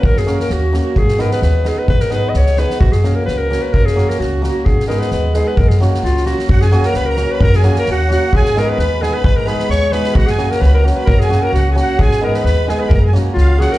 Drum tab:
SD |-oooo-o-|-oooo-o-|-oo-oooo|-oo-o-o-|
BD |o-------|o-------|o-------|o-------|

SD |-oooo-o-|-oooo-o-|-ooooooo|-oooo-o-|
BD |o-------|o-------|o-------|o-------|

SD |-oooo-o-|-oo-o-o-|--ooo-oo|-oooo-o-|
BD |o-------|o-------|o-------|o-------|

SD |-oo-o-o-|-o-oo-o-|--o-o-oo|
BD |o-------|o-------|o-------|